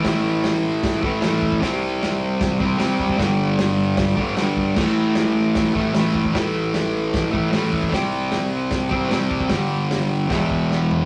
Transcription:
0.03 1.01 A2 loud
0.03 1.03 E3 medium
0.03 kick medium
0.03 snare loud
0.03 open hi-hat medium
0.09 1.00 A3 loud
0.44 snare loud
0.44 open hi-hat medium
0.83 kick loud
0.83 snare loud
0.83 open hi-hat medium
1.01 1.23 E3 medium
1.01 1.21 A3 medium
1.01 kick medium
1.06 1.20 A2 medium
1.21 1.60 A2 medium
1.21 1.62 E3 medium
1.21 snare loud
1.21 open hi-hat medium
1.27 1.63 A3 medium
1.42 kick medium
1.52 kick medium
1.61 2.59 C3 medium
1.61 2.60 G3 loud
1.61 kick medium
1.61 snare loud
1.61 open hi-hat medium
1.66 2.58 C4 medium
2.03 snare loud
2.03 open hi-hat medium
2.41 kick loud
2.41 snare loud
2.41 open hi-hat medium
2.59 2.80 G3 medium
2.59 2.79 C4 medium
2.59 kick medium
2.65 2.77 C3 medium
2.78 3.18 C3 medium
2.78 3.19 G3 medium
2.78 snare loud
2.78 open hi-hat medium
2.84 3.20 C4 medium
2.99 kick medium
3.10 kick medium
3.17 4.15 G2 medium
3.17 4.17 D3 loud
3.17 kick loud
3.17 snare loud
3.17 open hi-hat medium
3.22 4.15 G3 loud
3.59 snare loud
3.59 open hi-hat medium
3.97 kick loud
3.97 snare loud
3.97 open hi-hat medium
4.16 4.37 D3 medium
4.16 4.36 G3 medium
4.16 kick medium
4.22 4.35 G2 medium
4.37 4.75 G2 medium
4.37 4.76 D3 medium
4.37 snare loud
4.37 open hi-hat medium
4.41 4.78 G3 medium
4.57 kick medium
4.76 5.74 A2 medium
4.76 5.76 E3 loud
4.76 kick loud
4.76 snare loud
4.76 crash loud
4.82 5.73 A3 medium
5.15 snare loud
5.15 open hi-hat medium
5.55 kick loud
5.55 snare loud
5.55 open hi-hat medium
5.74 5.95 E3 medium
5.74 5.93 A3 medium
5.74 kick medium
5.80 5.92 A2 medium
5.93 6.31 A2 medium
5.93 6.35 E3 medium
5.93 snare loud
5.93 open hi-hat medium
5.98 6.35 A3 medium
6.15 kick medium
6.25 kick medium
6.32 7.31 A2 medium
6.32 7.33 E3 medium
6.32 kick loud
6.32 snare loud
6.32 open hi-hat medium
6.37 7.30 A3 medium
6.74 snare loud
6.74 open hi-hat medium
7.14 kick loud
7.14 snare loud
7.14 open hi-hat medium
7.31 7.52 E3 medium
7.31 7.51 A3 medium
7.31 kick medium
7.36 7.49 A2 medium
7.51 7.90 A2 medium
7.51 7.92 E3 loud
7.51 snare loud
7.51 open hi-hat medium
7.56 7.93 A3 medium
7.73 kick medium
7.83 kick medium
7.91 8.89 C3 medium
7.91 8.91 G3 loud
7.91 kick medium
7.91 snare loud
7.91 open hi-hat medium
7.96 8.88 C4 medium
8.32 snare loud
8.32 open hi-hat medium
8.71 kick loud
8.71 snare loud
8.71 open hi-hat medium
8.90 9.11 G3 medium
8.90 9.09 C4 medium
8.90 kick medium
8.95 9.08 C3 medium
9.09 9.49 C3 medium
9.09 9.50 G3 medium
9.09 snare loud
9.09 open hi-hat medium
9.14 9.51 C4 medium
9.31 kick medium
9.40 kick medium
9.48 10.27 G2 medium
9.48 10.30 D3 loud
9.48 kick loud
9.48 snare loud
9.48 open hi-hat medium
9.54 10.31 G3 loud
9.91 snare loud
9.91 open hi-hat medium
10.28 11.05 E2 loud
10.28 11.05 B2 loud
10.28 kick loud
10.28 snare loud
10.28 open hi-hat medium
10.33 11.05 E3 loud
10.50 kick medium
10.71 snare medium
10.91 floor tom medium

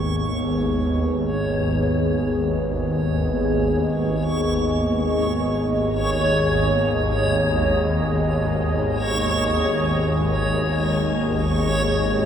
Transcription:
0.00 12.26 G#1 medium
0.00 12.26 D#2 medium
0.00 12.26 B3 medium
0.00 11.85 G#4 medium
0.00 12.26 C#5 medium
0.00 12.26 D#5 medium
10.40 12.26 G#3 medium
11.38 12.26 C#4 medium
11.79 12.26 B4 medium

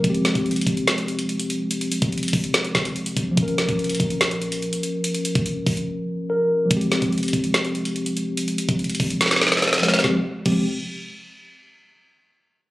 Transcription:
0.00 3.30 F3 medium
0.00 3.33 G#3 medium
0.04 0.26 F1 loud
0.04 3.34 C4 medium
0.04 kick loud
0.04 closed hi-hat medium
0.10 3.36 G4 medium
0.14 closed hi-hat medium
0.25 0.35 G#1 loud
0.25 snare loud
0.25 closed hi-hat medium
0.35 0.58 F1 loud
0.35 kick medium
0.35 closed hi-hat medium
0.46 closed hi-hat soft
0.51 closed hi-hat medium
0.56 0.66 G#1 loud
0.56 closed hi-hat medium
0.61 closed hi-hat medium
0.67 1.88 F1 loud
0.67 kick medium
0.67 closed hi-hat medium
0.77 closed hi-hat medium
0.87 snare loud
0.87 closed hi-hat medium
0.98 closed hi-hat medium
1.08 closed hi-hat soft
1.19 closed hi-hat medium
1.29 closed hi-hat soft
1.40 closed hi-hat medium
1.50 closed hi-hat medium
1.71 closed hi-hat medium
1.81 closed hi-hat medium
1.92 closed hi-hat medium
2.02 2.32 F1 loud
2.02 kick medium
2.02 closed hi-hat medium
2.12 closed hi-hat soft
2.18 closed hi-hat soft
2.23 closed hi-hat medium
2.28 closed hi-hat medium
2.33 2.73 F1 loud
2.33 kick medium
2.33 open hi-hat medium
2.44 closed hi-hat medium
2.54 snare loud
2.54 closed hi-hat medium
2.65 closed hi-hat medium
2.75 3.15 F1 loud
2.75 kick medium
2.75 snare loud
2.75 closed hi-hat soft
2.85 closed hi-hat medium
2.96 closed hi-hat soft
3.06 closed hi-hat medium
3.17 3.37 F1 loud
3.17 kick medium
3.17 closed hi-hat medium
3.31 6.64 F3 medium
3.31 6.66 A#3 medium
3.37 3.60 A#1 loud
3.37 6.67 C#4 medium
3.37 kick loud
3.37 closed hi-hat medium
3.43 6.29 A#4 medium
3.48 closed hi-hat medium
3.58 3.68 C#2 loud
3.58 snare loud
3.58 closed hi-hat medium
3.69 3.99 A#1 loud
3.69 kick medium
3.69 closed hi-hat medium
3.79 closed hi-hat soft
3.84 closed hi-hat medium
3.89 closed hi-hat medium
3.95 closed hi-hat medium
4.00 4.70 A#1 loud
4.00 kick medium
4.00 closed hi-hat medium
4.10 closed hi-hat medium
4.21 snare loud
4.21 closed hi-hat medium
4.31 closed hi-hat medium
4.42 closed hi-hat medium
4.52 closed hi-hat medium
4.62 closed hi-hat soft
4.73 closed hi-hat medium
4.83 closed hi-hat medium
5.04 closed hi-hat medium
5.14 closed hi-hat medium
5.25 closed hi-hat medium
5.35 5.65 A#1 loud
5.35 kick medium
5.35 closed hi-hat medium
5.46 closed hi-hat medium
5.67 5.87 A#1 loud
5.67 kick medium
5.67 open hi-hat medium
5.77 closed hi-hat medium
6.30 6.68 A#4 medium
6.65 9.77 F3 medium
6.65 9.78 G#3 medium
6.71 6.93 F1 loud
6.71 9.80 C4 medium
6.71 kick loud
6.71 closed hi-hat medium
6.77 9.82 G4 medium
6.81 closed hi-hat medium
6.92 7.02 G#1 loud
6.92 snare loud
6.92 closed hi-hat medium
7.02 7.24 F1 loud
7.02 kick medium
7.02 closed hi-hat medium
7.12 closed hi-hat soft
7.18 closed hi-hat soft
7.23 7.33 G#1 loud
7.23 closed hi-hat medium
7.28 closed hi-hat medium
7.33 8.54 F1 loud
7.33 kick medium
7.33 closed hi-hat medium
7.44 closed hi-hat medium
7.54 snare loud
7.54 closed hi-hat medium
7.65 closed hi-hat medium
7.75 closed hi-hat soft
7.85 closed hi-hat medium
7.96 closed hi-hat soft
8.06 closed hi-hat medium
8.17 closed hi-hat medium
8.37 closed hi-hat medium
8.48 closed hi-hat medium
8.58 closed hi-hat medium
8.69 8.99 F1 loud
8.69 kick medium
8.69 closed hi-hat medium
8.79 closed hi-hat soft
8.84 closed hi-hat medium
8.90 closed hi-hat medium
8.95 closed hi-hat medium
9.00 10.00 F1 loud
9.00 kick medium
9.00 open hi-hat medium
9.10 closed hi-hat medium
9.21 snare medium
9.21 closed hi-hat medium
9.26 snare medium
9.31 snare medium
9.31 closed hi-hat medium
9.36 snare medium
9.42 snare medium
9.42 closed hi-hat soft
9.47 snare medium
9.52 snare medium
9.52 closed hi-hat medium
9.57 snare medium
9.62 snare medium
9.62 closed hi-hat soft
9.68 snare medium
9.73 snare loud
9.73 closed hi-hat medium
9.78 10.02 F3 medium
9.78 10.03 G#3 medium
9.78 snare medium
9.83 10.03 C4 medium
9.83 10.03 G4 medium
9.83 snare loud
9.83 closed hi-hat medium
9.88 snare medium
9.94 snare loud
9.99 snare loud
10.04 10.16 F1 loud
10.04 10.16 F3 medium
10.04 10.16 G#3 medium
10.04 10.16 C4 medium
10.04 10.16 G4 medium
10.04 kick loud
10.04 snare medium
10.46 10.84 F1 loud
10.46 10.65 F3 medium
10.46 10.65 G#3 medium
10.46 10.65 C4 medium
10.46 10.65 G4 medium
10.46 kick loud
10.46 crash medium

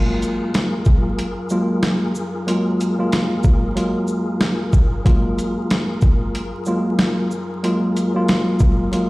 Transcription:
0.00 9.10 F#2 medium
0.00 1.23 F#3 medium
0.00 1.24 G#3 medium
0.00 1.24 A#3 medium
0.00 1.24 F4 medium
0.00 9.10 F4 medium
0.00 9.10 G#4 medium
0.00 5.01 A#4 medium
0.22 closed hi-hat soft
0.22 shaker soft
0.54 snare loud
0.54 closed hi-hat medium
0.85 kick medium
0.85 shaker soft
1.19 closed hi-hat loud
1.50 2.11 F#3 medium
1.50 2.11 G#3 medium
1.50 2.12 A#3 medium
1.50 2.12 F4 loud
1.50 shaker medium
1.83 snare loud
1.83 closed hi-hat medium
2.15 shaker soft
2.47 2.94 F#3 loud
2.47 2.94 G#3 medium
2.47 2.95 A#3 medium
2.47 2.95 F4 loud
2.47 closed hi-hat medium
2.81 closed hi-hat soft
2.81 shaker soft
2.98 3.71 F#3 medium
2.98 3.71 G#3 medium
2.98 3.71 A#3 medium
2.98 3.72 F4 loud
3.12 snare loud
3.12 closed hi-hat medium
3.43 kick medium
3.43 shaker soft
3.76 4.81 F#3 loud
3.76 4.82 G#3 medium
3.76 4.82 A#3 medium
3.76 4.82 F4 medium
3.76 closed hi-hat medium
4.07 shaker medium
4.41 snare loud
4.41 closed hi-hat medium
4.73 kick medium
4.73 shaker soft
5.05 6.40 F#3 medium
5.05 6.40 G#3 medium
5.05 6.40 A#3 medium
5.05 6.41 F4 loud
5.05 9.10 A#4 medium
5.05 kick loud
5.05 closed hi-hat medium
5.39 closed hi-hat medium
5.39 shaker soft
5.70 snare loud
5.70 closed hi-hat medium
6.01 kick medium
6.01 shaker soft
6.35 closed hi-hat medium
6.66 7.27 F#3 loud
6.66 7.27 G#3 medium
6.66 7.28 A#3 medium
6.66 7.28 F4 loud
6.66 shaker medium
6.99 snare loud
6.99 closed hi-hat medium
7.31 shaker soft
7.63 8.10 F#3 loud
7.63 8.11 G#3 medium
7.63 8.11 A#3 medium
7.63 8.11 F4 loud
7.63 closed hi-hat medium
7.97 closed hi-hat medium
7.97 shaker soft
8.14 8.87 F#3 medium
8.14 8.87 G#3 medium
8.14 8.88 A#3 medium
8.14 8.88 F4 loud
8.28 snare loud
8.28 closed hi-hat medium
8.59 kick medium
8.59 shaker soft
8.92 9.10 F#3 medium
8.92 9.10 G#3 medium
8.92 9.10 A#3 medium
8.92 9.10 F4 loud
8.92 closed hi-hat medium

